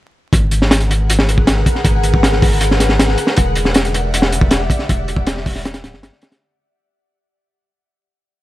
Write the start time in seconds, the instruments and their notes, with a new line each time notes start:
0.33 sub bass G#1, ambient pad G#4 A#4 B4 F#5, kick, closed hi-hat
0.51 closed hi-hat
0.62 snare
0.71 snare, closed hi-hat
0.80 closed hi-hat
0.91 closed hi-hat
1.10 closed hi-hat
1.19 snare
1.29 closed hi-hat
1.38 kick
1.47 snare, closed hi-hat
1.66 kick, closed hi-hat
1.75 snare
1.85 sub bass G#1, kick, closed hi-hat
2.03 closed hi-hat
2.14 kick
2.23 snare, closed hi-hat
2.33 snare
2.42 kick, open hi-hat
2.61 closed hi-hat
2.71 snare
2.80 snare, closed hi-hat
2.89 snare
2.99 snare, closed hi-hat
3.08 snare
3.18 closed hi-hat
3.27 snare
3.37 sub bass E1, ambient pad G4 D5 E5, kick, closed hi-hat
3.56 closed hi-hat
3.65 snare
3.74 snare, closed hi-hat
3.85 closed hi-hat
3.94 closed hi-hat
4.14 closed hi-hat
4.22 snare
4.32 closed hi-hat
4.41 kick
4.51 snare, closed hi-hat
4.70 kick, closed hi-hat
4.79 snare
4.89 sub bass E1, kick, closed hi-hat
5.08 closed hi-hat
5.16 kick
5.27 snare, closed hi-hat
5.37 snare
5.46 kick, open hi-hat
5.55 snare
5.65 snare, closed hi-hat
5.74 snare, closed hi-hat
5.84 sub bass D1, snare, closed hi-hat
5.94 sub bass G1, snare
6.03 snare, closed hi-hat
6.13 snare
6.22 snare, closed hi-hat
6.32 snare, closed hi-hat